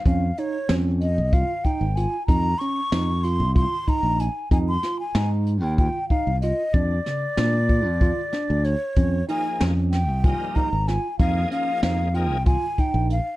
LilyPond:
<<
  \new Staff \with { instrumentName = "Flute" } { \time 7/8 \key des \lydian \tempo 4 = 94 f''8 des''4 ees''8 f''8 g''8 aes''8 | bes''8 des'''4 c'''8 c'''8 bes''8 aes''8 | aes''16 c'''8 aes''8 r8 g''16 g''8 f''8 ees''8 | d''2. cis''8~ |
cis''8 aes''8 r8 g''8 aes''8 bes''8 aes''8 | f''8 f''8 f''8 g''8 aes''8 g''8 f''8 | }
  \new Staff \with { instrumentName = "Tine electric piano" } { \time 7/8 \key des \lydian des'8 ees'8 des'4 f'8 ees'8 f'8 | ees'8 des'8 ees'8 f'8 f'8 ees'4 | ees'8 f'8 ees'4 f'8 ees'8 f'8 | d'8 cis8 d'8 f'8 f'8 d'4 |
des'8 ees'8 des'4 f'8 ees'8 f'8 | ees'8 des'8 ees'8 f'8 f'8 ees'4 | }
  \new Staff \with { instrumentName = "Tonewheel organ" } { \time 7/8 \key des \lydian r2. r8 | r2. r8 | r2. r8 | r2. r8 |
r8 <f bes ees' aes'>8 r4 <f g bes ees'>8 r4 | <f bes ees' aes'>4. <f bes ees' aes'>8 r4. | }
  \new Staff \with { instrumentName = "Fingered electric bass" } { \clef bass \time 7/8 \key des \lydian f,8 r8 f,8. c,8 r8 aes,,8 r16 | f,8 r8 f,8. c,8 r8 bes,,8 r16 | f,8 r8 aes,8. ees,8 r8 c,8 r16 | f,8 r8 bes,8. f,8 r8 d,8 r16 |
f,8 r8 f,8. c,8 r8 aes,,8 r16 | f,8 r8 f,8. c,8 r8 bes,,8 r16 | }
  \new DrumStaff \with { instrumentName = "Drums" } \drummode { \time 7/8 <hh bd>8 hh8 <hh sn>8 hh8 <hh bd>8 <hh bd>8 hh8 | <hh bd>8 hh8 <hh sn>8 hh8 <hh bd>8 <hh bd>8 hh8 | <hh bd>8 <hh sn>8 <hh sn>8 hh8 <hh bd>8 <hh bd>8 hh8 | <hh bd>8 <hh sn>8 <hh sn>8 <hh bd>8 <hh bd>8 <hh sn>8 hh8 |
<hh bd>8 hh8 <hh sn>8 <hh sn>8 <hh bd>8 <hh bd>8 <hh sn>8 | <hh bd>8 hh8 <hh sn>8 hh8 <hh bd>8 <hh bd>8 hh8 | }
>>